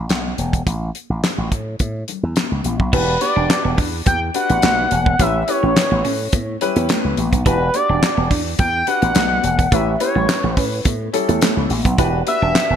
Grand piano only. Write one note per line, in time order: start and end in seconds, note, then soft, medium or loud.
2.92 3.12 D4 medium
2.92 3.12 F#4 medium
2.92 3.12 G4 medium
2.92 3.12 B4 medium
3.21 3.95 D4 medium
3.21 3.95 F#4 medium
3.21 3.95 G4 medium
3.21 3.95 B4 medium
4.34 4.89 D4 medium
4.34 4.89 F#4 medium
4.34 4.90 G4 medium
4.34 4.90 B4 medium
5.19 5.38 C#4 medium
5.19 5.38 E4 medium
5.19 5.39 G4 medium
5.19 5.39 B4 medium
5.48 6.21 C#4 medium
5.48 6.21 E4 medium
5.48 6.22 G4 medium
5.48 6.22 B4 medium
6.61 7.16 C#4 medium
6.61 7.16 E4 medium
6.61 7.16 G4 medium
6.61 7.16 B4 loud
7.46 7.65 D4 medium
7.46 7.65 F#4 medium
7.46 7.65 G4 medium
7.46 7.65 B4 medium
7.74 8.48 D4 medium
7.74 8.48 F#4 medium
7.74 8.48 G4 medium
7.74 8.48 D5 medium
8.87 9.42 D4 medium
8.87 9.42 F#4 medium
8.87 9.42 G4 medium
8.87 9.42 B4 medium
9.72 9.91 C#4 medium
9.72 9.91 E4 medium
9.72 9.91 G4 medium
9.72 9.91 B4 medium
10.00 10.74 C#4 medium
10.00 10.74 E4 medium
10.00 10.74 G4 medium
10.00 10.74 B4 medium
11.13 11.68 C#4 medium
11.13 11.68 E4 medium
11.13 11.68 G4 medium
11.13 11.69 A4 loud
11.98 12.17 D4 loud
11.98 12.17 F#4 medium
11.98 12.17 G4 medium
11.98 12.18 B4 loud
12.27 12.76 D4 medium
12.27 12.76 F#4 medium
12.27 12.76 G4 medium
12.27 12.76 B4 medium